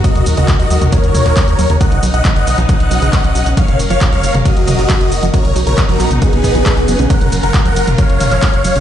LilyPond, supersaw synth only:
\new Staff \with { instrumentName = "Supersaw synth" } { \time 4/4 \key fis \major \tempo 4 = 136 <fis' dis''>8 r16 <fis' dis''>16 r16 <fis' dis''>8 r16 <ais' cis''>4.~ <ais' cis''>16 r16 | <dis'' fis''>8 r16 <dis'' fis''>16 r16 <dis'' fis''>8 r16 <dis'' fis''>4.~ <dis'' fis''>16 r16 | <cis'' eis''>8 r16 <cis'' eis''>16 r16 <cis'' eis''>8 r16 <fis' dis''>4.~ <fis' dis''>16 r16 | <ais' cis''>8 r16 <ais' cis''>16 r16 <fis' ais'>8 r16 <b gis'>4.~ <b gis'>16 r16 |
<ais' fis''>8 r16 <ais' fis''>16 r16 <ais' fis''>8 r16 <cis'' eis''>4.~ <cis'' eis''>16 r16 | }